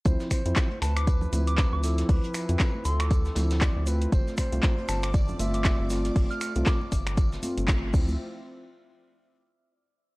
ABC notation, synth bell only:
X:1
M:4/4
L:1/16
Q:"Swing 16ths" 1/4=118
K:Ddor
V:1 name="Synth bell"
z6 a d' z3 d' d' d'3- | d'3 z3 c' d'3 z6 | z6 a d' z3 d' d' z3 | z f' f' z d'4 z8 |
z16 |]